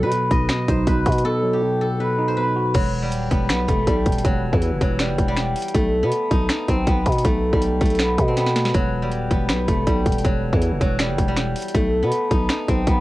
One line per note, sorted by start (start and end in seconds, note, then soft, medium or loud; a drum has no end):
0.00 0.11 B2 medium
0.00 0.12 B2 loud
0.00 0.87 F#3 medium
0.00 0.37 E4 medium
0.00 1.53 G4 medium
0.00 1.24 A4 loud
0.00 0.75 B4 medium
0.12 0.48 B2 medium
0.12 closed hi-hat medium
0.31 0.49 B1 loud
0.31 0.50 D#5 medium
0.31 kick loud
0.31 closed hi-hat medium
0.49 0.86 B2 medium
0.49 2.28 D#5 medium
0.49 finger snap medium
0.49 snare loud
0.49 closed hi-hat medium
0.68 0.86 B1 loud
0.68 1.62 D#4 medium
0.68 0.93 C5 medium
0.68 kick medium
0.68 closed hi-hat medium
0.87 1.05 B1 loud
0.87 1.23 B2 medium
0.87 2.00 B4 medium
0.87 kick loud
0.87 closed hi-hat medium
1.06 1.24 B2 loud
1.06 2.00 F#4 medium
1.06 kick medium
1.06 closed hi-hat medium
1.12 closed hi-hat medium
1.18 closed hi-hat medium
1.25 1.61 B2 loud
1.25 1.81 A4 loud
1.43 2.37 F#3 medium
1.53 2.80 G4 medium
1.62 1.99 B2 medium
1.81 4.01 A4 medium
2.00 2.36 B2 medium
2.00 2.34 B4 medium
2.18 2.75 D#4 medium
2.28 2.43 C5 medium
2.37 2.75 B2 medium
2.37 4.42 B4 medium
2.56 2.75 F#4 medium
2.74 3.14 E1 loud
2.74 4.24 F#3 loud
2.74 kick loud
2.74 closed hi-hat medium
2.74 crash loud
3.02 3.86 G3 medium
3.12 3.30 D#1 loud
3.12 closed hi-hat medium
3.31 3.51 E1 loud
3.31 3.49 B3 medium
3.31 kick loud
3.31 closed hi-hat medium
3.49 3.68 B1 loud
3.49 6.02 B3 medium
3.49 finger snap medium
3.49 snare loud
3.49 closed hi-hat medium
3.68 3.86 E1 loud
3.68 5.74 A3 medium
3.68 kick medium
3.68 closed hi-hat medium
3.87 4.05 B1 loud
3.87 4.98 G3 medium
3.87 kick medium
3.87 closed hi-hat medium
4.06 4.24 D#1 loud
4.06 kick medium
4.06 closed hi-hat medium
4.12 closed hi-hat medium
4.18 closed hi-hat medium
4.25 4.52 E1 loud
4.25 4.80 F#3 medium
4.25 kick loud
4.25 closed hi-hat medium
4.53 4.73 E2 loud
4.53 5.80 E3 medium
4.53 kick medium
4.62 closed hi-hat medium
4.72 4.80 F#1 loud
4.81 5.11 E1 loud
4.81 5.80 F#3 medium
4.81 kick loud
4.81 closed hi-hat medium
4.99 5.27 G3 medium
4.99 finger snap medium
4.99 snare loud
4.99 closed hi-hat medium
5.09 5.18 F#1 loud
5.18 5.54 E1 loud
5.18 kick loud
5.18 closed hi-hat medium
5.28 5.80 G3 medium
5.37 finger snap medium
5.37 snare medium
5.37 closed hi-hat medium
5.56 closed hi-hat medium
5.56 open hi-hat medium
5.62 closed hi-hat medium
5.68 closed hi-hat medium
5.74 6.04 B1 loud
5.74 7.24 A3 loud
5.74 kick loud
5.74 closed hi-hat medium
6.03 6.12 B2 loud
6.03 6.75 B3 medium
6.12 closed hi-hat medium
6.31 6.49 B1 loud
6.31 6.50 D#4 medium
6.31 kick loud
6.31 closed hi-hat medium
6.49 9.20 D#4 medium
6.49 finger snap medium
6.49 snare loud
6.49 closed hi-hat medium
6.68 6.86 B1 loud
6.68 6.93 C4 medium
6.68 kick medium
6.68 closed hi-hat medium
6.87 7.05 B1 loud
6.87 8.00 B3 medium
6.87 kick loud
6.87 closed hi-hat medium
7.06 7.24 B2 loud
7.06 kick medium
7.06 closed hi-hat medium
7.12 closed hi-hat medium
7.18 closed hi-hat medium
7.25 7.52 B1 loud
7.25 7.81 A3 loud
7.25 kick loud
7.25 closed hi-hat medium
7.53 7.80 B1 loud
7.53 8.80 G3 medium
7.53 kick loud
7.62 closed hi-hat medium
7.81 8.17 B1 loud
7.81 9.67 A3 medium
7.81 kick loud
7.81 closed hi-hat medium
7.86 closed hi-hat medium
7.90 closed hi-hat medium
7.95 finger snap medium
7.95 closed hi-hat soft
8.00 8.34 B3 medium
8.00 snare loud
8.00 closed hi-hat medium
8.18 8.72 B2 loud
8.18 kick medium
8.18 closed hi-hat medium
8.28 8.43 C4 medium
8.37 9.30 B3 medium
8.37 snare medium
8.37 closed hi-hat medium
8.47 snare medium
8.56 snare loud
8.56 closed hi-hat medium
8.65 snare loud
8.74 9.14 E1 loud
8.74 10.24 F#3 loud
8.74 kick loud
8.74 closed hi-hat medium
9.02 9.86 G3 medium
9.12 9.30 D#1 loud
9.12 closed hi-hat medium
9.31 9.51 E1 loud
9.31 9.49 B3 medium
9.31 kick loud
9.31 closed hi-hat medium
9.49 9.67 B1 loud
9.49 12.02 B3 medium
9.49 finger snap medium
9.49 snare loud
9.49 closed hi-hat medium
9.68 9.86 E1 loud
9.68 11.74 A3 medium
9.68 kick medium
9.68 closed hi-hat medium
9.87 10.05 B1 loud
9.87 10.98 G3 medium
9.87 kick loud
9.87 closed hi-hat medium
10.06 10.24 D#1 loud
10.06 kick loud
10.06 closed hi-hat medium
10.12 closed hi-hat medium
10.18 closed hi-hat medium
10.25 10.52 E1 loud
10.25 10.80 F#3 medium
10.25 kick loud
10.25 closed hi-hat medium
10.53 10.73 E2 loud
10.53 11.80 E3 medium
10.53 kick loud
10.62 closed hi-hat medium
10.71 10.80 F#1 loud
10.81 11.11 E1 loud
10.81 11.80 F#3 medium
10.81 kick loud
10.81 closed hi-hat medium
10.99 11.27 G3 medium
10.99 finger snap medium
10.99 snare loud
10.99 closed hi-hat medium
11.09 11.18 F#1 loud
11.18 11.54 E1 loud
11.18 kick medium
11.18 closed hi-hat medium
11.28 11.80 G3 medium
11.37 finger snap medium
11.37 snare medium
11.37 closed hi-hat medium
11.56 closed hi-hat medium
11.56 open hi-hat medium
11.62 closed hi-hat medium
11.68 closed hi-hat medium
11.74 12.04 B1 loud
11.74 13.00 A3 loud
11.74 kick loud
11.74 closed hi-hat medium
12.03 12.12 B2 loud
12.03 12.75 B3 medium
12.12 closed hi-hat medium
12.31 12.49 B1 loud
12.31 12.49 D#4 medium
12.31 kick loud
12.31 closed hi-hat medium
12.49 13.00 D#4 medium
12.49 finger snap medium
12.49 snare loud
12.49 closed hi-hat medium
12.68 12.86 B1 loud
12.68 12.93 C4 medium
12.68 kick medium
12.68 closed hi-hat medium
12.87 13.00 B1 loud
12.87 13.00 B3 medium
12.87 kick loud
12.87 closed hi-hat medium